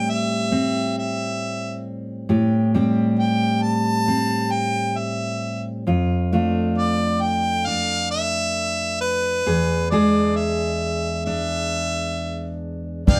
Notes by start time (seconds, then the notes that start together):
Already playing: A2 G3 C4 G4 G5
0.10 E5
0.52 C4
0.98 E5
2.29 A2 G4
2.74 G3 C4 G4
3.19 G5
3.62 A5
4.08 C4
4.52 G5
4.97 E5
5.87 F2 F4
6.33 A3 D4 F4
6.78 D5
7.22 G5
7.66 D4 F5
8.11 E5
9.01 B4
9.46 E2 G#4
9.90 G#3 D4 G#4 D5
10.36 E5
11.25 D4 E5
13.07 G1 G2 D4 B4 F5 G5, kick, closed hi-hat